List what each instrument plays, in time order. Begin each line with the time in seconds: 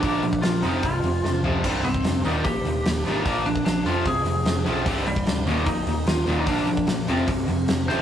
Already playing: lead electric guitar D4, tonewheel organ A#4
0.02 picked electric bass A#1, distorted electric guitar A#2 F3 A#3, tonewheel organ D4 F5, kick, open hi-hat
0.23 picked electric bass A#1, distorted electric guitar A#2 F3, open hi-hat
0.33 kick
0.42 picked electric bass A#1, distorted electric guitar A#2 F3, lead electric guitar F4, snare, open hi-hat
0.61 picked electric bass F1, distorted electric guitar F2 C3 F3, lead electric guitar D#4, tonewheel organ F4 C5 G#5, open hi-hat
0.83 picked electric bass C1, distorted electric guitar F2 C3, lead electric guitar F4, kick, open hi-hat
1.03 picked electric bass F1, distorted electric guitar F2 C3, open hi-hat
1.23 picked electric bass F1, distorted electric guitar F2 C3, snare
1.43 picked electric bass F1, distorted electric guitar F2 C3 F3, floor tom
1.64 picked electric bass C1, distorted electric guitar C2 G2 C3, tonewheel organ D#4 G5, kick, open hi-hat, crash
1.84 picked electric bass C1, distorted electric guitar C2 G2, lead electric guitar C4, open hi-hat
1.94 kick
2.04 picked electric bass F1, distorted electric guitar C2 G2, snare, open hi-hat
2.25 picked electric bass D#1, distorted electric guitar D#2 A#2 D#3, lead electric guitar D#4, tonewheel organ D#4 A#4, open hi-hat
2.44 picked electric bass A#1, distorted electric guitar D#2 A#2, lead electric guitar G4, kick, open hi-hat
2.64 picked electric bass D#1, distorted electric guitar D#2 A#2, open hi-hat
2.85 picked electric bass D#1, distorted electric guitar D#2 A#2, snare, open hi-hat
3.05 picked electric bass G#1, distorted electric guitar D#2 A#2 D#3, open hi-hat
3.26 picked electric bass A#1, distorted electric guitar A#2 F3 A#3, tonewheel organ D4 F5, kick, open hi-hat
3.45 picked electric bass A#1, distorted electric guitar A#2 F3, lead electric guitar D4, open hi-hat
3.56 kick
3.65 picked electric bass A#1, distorted electric guitar A#2 F3, lead electric guitar D4, snare, open hi-hat
3.86 picked electric bass F1, distorted electric guitar F2 C3 F3, lead electric guitar F4, tonewheel organ F4 C5 G#5, open hi-hat
4.06 picked electric bass C1, distorted electric guitar F2 C3, lead electric guitar G#4, kick, open hi-hat
4.25 picked electric bass F1, distorted electric guitar F2 C3, open hi-hat
4.45 picked electric bass F1, distorted electric guitar F2 C3, snare, open hi-hat
4.65 picked electric bass B1, distorted electric guitar F2 C3 F3, open hi-hat
4.86 picked electric bass C1, distorted electric guitar C2 G2 C3, tonewheel organ D#4 G5, kick, open hi-hat
5.06 picked electric bass C1, distorted electric guitar C2 G2, lead electric guitar G3, open hi-hat
5.16 kick
5.26 picked electric bass D1, distorted electric guitar C2 G2, snare, open hi-hat
5.46 picked electric bass D#1, distorted electric guitar D#2 A#2 D#3, lead electric guitar A#3, tonewheel organ A#4 G5, open hi-hat
5.66 picked electric bass A#1, distorted electric guitar D#2 A#2, lead electric guitar D#4, kick, open hi-hat
5.86 picked electric bass D#1, distorted electric guitar D#2 A#2, open hi-hat
6.06 picked electric bass D#1, distorted electric guitar D#2 A#2, lead electric guitar F4, snare, open hi-hat
6.26 picked electric bass D#1, distorted electric guitar D#2 A#2 D#3, open hi-hat
6.40 lead electric guitar D#4
6.46 picked electric bass A#1, distorted electric guitar A#2 F3 A#3, lead electric guitar D4, tonewheel organ D4 A#4 F5, kick, open hi-hat
6.58 snare
6.67 picked electric bass A#1, distorted electric guitar A#2 F3, open hi-hat
6.77 kick
6.87 picked electric bass A#1, distorted electric guitar A#2 F3, snare, open hi-hat
7.07 picked electric bass F1, distorted electric guitar F2 C3 F3, tonewheel organ C4 G#4, lead electric guitar C4, open hi-hat
7.28 picked electric bass C1, distorted electric guitar F2 C3, kick, open hi-hat
7.47 picked electric bass F1, distorted electric guitar F2 C3, open hi-hat
7.68 picked electric bass F1, distorted electric guitar F2 C3, snare, open hi-hat
7.87 picked electric bass A1, distorted electric guitar F2 C3 F3, lead electric guitar C5, snare